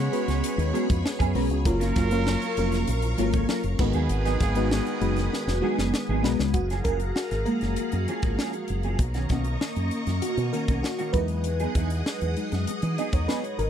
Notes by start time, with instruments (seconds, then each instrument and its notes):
Already playing: fm electric piano G#3 B3 C#4 F#4 B4, horn section G#3 F#4 C#5, string machine G#4 C#5 B5
0.12 fm electric piano G#3 B3 C#4 F#4 B4, closed hi-hat
0.28 fingered electric bass C#2, muted clean electric guitar stroke, snare, closed hi-hat
0.44 closed hi-hat
0.58 fingered electric bass D#2, muted clean electric guitar stroke, closed hi-hat
0.73 clean electric guitar F#3 B3 C#4 G#4, fm electric piano G#3 B3 C#4 F#4 B4, closed hi-hat
0.88 fingered electric bass F2, muted clean electric guitar stroke, kick, closed hi-hat
1.04 muted clean electric guitar stroke, snare
1.19 fingered electric bass F#2, clean electric guitar F#3 B3 C#4 G#4, kick, closed hi-hat
1.34 fingered electric bass B1, clean electric guitar F#3 B3 C#4 A#4, fm electric piano G#3 B3 C#4 F#4 B4, open hi-hat
1.50 fingered electric bass C#2, muted clean electric guitar stroke, closed hi-hat
1.65 fingered electric bass F#1, fm electric piano F#3 A#3 C#4 F4 A#4, horn section F#3 F4 A#4, string machine A#4 F5 C#6, muted clean electric guitar stroke, kick, closed hi-hat
1.80 clean electric guitar F#3 C#4 F4 A#4, snare, closed hi-hat
1.96 fingered electric bass F#1, clean electric guitar F#3 C#4 F4 A#4, kick, snare, closed hi-hat
2.11 fm electric piano F#3 A#3 C#4 F4 A#4, muted clean electric guitar stroke, closed hi-hat
2.26 muted clean electric guitar stroke, snare
2.42 muted clean electric guitar stroke, closed hi-hat
2.57 fingered electric bass F1, fm electric piano F#3 A#3 C#4 F4 A#4, closed hi-hat
2.72 muted clean electric guitar stroke, snare, closed hi-hat
2.87 fingered electric bass A#1, muted clean electric guitar stroke, closed hi-hat
3.02 muted clean electric guitar stroke, closed hi-hat
3.18 fingered electric bass G#1, clean electric guitar F#3 C#4 F4 A#4, fm electric piano F#3 A#3 C#4 F4 A4, closed hi-hat
3.26 fm electric piano A#4
3.33 clean electric guitar F#3 C#4 F4 C#5, kick, closed hi-hat
3.49 clean electric guitar F#3 C#4 F4 A#4, snare
3.64 fingered electric bass F#1, muted clean electric guitar stroke, closed hi-hat
3.79 fingered electric bass G#1, horn section D#3 B3 G#4, fm electric piano G#3 B3 D#4 F#4 B4, string machine B4 G#5 D#6, muted clean electric guitar stroke, kick, crash
3.93 fingered electric bass D#2, clean electric guitar F#3 B3 D#4 G#4, closed hi-hat
4.09 fingered electric bass G#1, muted clean electric guitar stroke, closed hi-hat
4.25 clean electric guitar F#3 B3 D#4 G#4, snare, closed hi-hat
4.40 fingered electric bass G#1, clean electric guitar F#3 B3 D#4 G#4, kick, snare, closed hi-hat
4.55 fm electric piano G#3 B3 D#4 F#4 B4, closed hi-hat
4.71 muted clean electric guitar stroke, snare
4.86 muted clean electric guitar stroke, closed hi-hat
5.01 fingered electric bass F#1, fm electric piano G#3 B3 D#4 F#4 B4, closed hi-hat
5.16 muted clean electric guitar stroke, snare, closed hi-hat
5.32 muted clean electric guitar stroke, snare
5.47 fingered electric bass F1, muted clean electric guitar stroke, snare
5.61 clean electric guitar F#3 B3 D#4 G#4, fm electric piano G#3 B3 D#4 F#4 B4
5.78 fingered electric bass F#1, clean electric guitar F#3 B3 D#4 G#4, snare
5.94 muted clean electric guitar stroke, snare
6.09 fingered electric bass G#1, clean electric guitar F#3 B3 D#4 G#4
6.23 fingered electric bass B1, clean electric guitar F#3 B3 D#4 A#4, fm electric piano G#3 B3 D#4 F#4 B4, snare
6.39 fingered electric bass C#2, muted clean electric guitar stroke, snare
6.54 fingered electric bass F#1, fm electric piano F#4, string machine G#4 F5 F#5 A#5, muted clean electric guitar stroke, kick, closed hi-hat
6.70 clean electric guitar F3 A#3 C#4 G#4, snare, closed hi-hat
6.84 fingered electric bass F#1, clean electric guitar F3 A#3 C#4 G#4, fm electric piano A#4, kick, closed hi-hat
7.00 muted clean electric guitar stroke, closed hi-hat
7.15 fm electric piano F#4, muted clean electric guitar stroke, snare
7.31 fingered electric bass G#1, muted clean electric guitar stroke, snare, closed hi-hat
7.45 fm electric piano F3 G#3 A#3 A#4, closed hi-hat
7.61 fingered electric bass F#1, muted clean electric guitar stroke, snare, closed hi-hat
7.76 muted clean electric guitar stroke, closed hi-hat
7.92 fingered electric bass F#2, muted clean electric guitar stroke, closed hi-hat
8.08 clean electric guitar F3 A#3 C#4 G#4, closed hi-hat
8.22 fingered electric bass G#1, clean electric guitar F3 A#3 C#4 A#4, kick, closed hi-hat
8.39 clean electric guitar F3 A#3 C#4 G#4, snare
8.53 muted clean electric guitar stroke, closed hi-hat
8.68 fingered electric bass F#1, muted clean electric guitar stroke, closed hi-hat
8.83 clean electric guitar F3 A#3 C#4 G#4, closed hi-hat
8.99 fingered electric bass B1, string machine A#3 D#5 A#5 C#6, muted clean electric guitar stroke, kick, closed hi-hat
9.14 clean electric guitar D#3 A#3 C#4 F#4, snare, closed hi-hat
9.29 fingered electric bass B1, fm electric piano D#3 A#3 C#4, clean electric guitar D#3 A#3 C#4 F#4, kick, snare, closed hi-hat
9.44 muted clean electric guitar stroke, closed hi-hat
9.61 muted clean electric guitar stroke, snare
9.76 fingered electric bass F#2, muted clean electric guitar stroke, closed hi-hat
9.91 closed hi-hat
10.07 fingered electric bass F#2, muted clean electric guitar stroke, snare, closed hi-hat
10.22 fm electric piano F#4, muted clean electric guitar stroke, muted fingered electric bass stroke, closed hi-hat
10.37 fingered electric bass B2, muted clean electric guitar stroke, closed hi-hat
10.52 clean electric guitar D#3 A#3 C#4 F#4, fm electric piano D#3 A#3 C#4 A#4, closed hi-hat
10.68 fingered electric bass B1, clean electric guitar D#3 A#3 C#4 F#4, kick, closed hi-hat
10.83 fm electric piano F#4, muted clean electric guitar stroke, snare
10.98 clean electric guitar D#3 A#3 C#4 F#4, closed hi-hat
11.13 fingered electric bass E2, fm electric piano F#3 G#3 D#4 B4, clean electric guitar F#3 B3 D#4 A#4, string machine G#4 D#5 F#5 D#6, kick, closed hi-hat
11.28 muted clean electric guitar stroke, closed hi-hat
11.44 muted clean electric guitar stroke, closed hi-hat
11.60 clean electric guitar F#3 B3 D#4 G#4, closed hi-hat
11.75 fingered electric bass E2, clean electric guitar F#3 B3 D#4 G#4, kick, closed hi-hat
11.90 muted clean electric guitar stroke, closed hi-hat
12.06 muted clean electric guitar stroke, snare
12.21 fingered electric bass E2, muted clean electric guitar stroke, closed hi-hat
12.37 fm electric piano F#3 G#3 D#4, closed hi-hat
12.52 fingered electric bass F#2, muted clean electric guitar stroke, snare, closed hi-hat
12.67 muted clean electric guitar stroke, muted fingered electric bass stroke, closed hi-hat
12.82 fingered electric bass E3, muted clean electric guitar stroke, closed hi-hat
12.98 clean electric guitar F#3 B3 D#4 G#4, fm electric piano D#5, closed hi-hat
13.13 fingered electric bass E2, clean electric guitar F#3 B3 D#4 A#4, fm electric piano C#5, kick, closed hi-hat
13.28 clean electric guitar F#3 B3 D#4 G#4, fm electric piano B4, snare
13.44 muted clean electric guitar stroke, closed hi-hat
13.58 fingered electric bass G#1, fm electric piano A#4, muted clean electric guitar stroke, closed hi-hat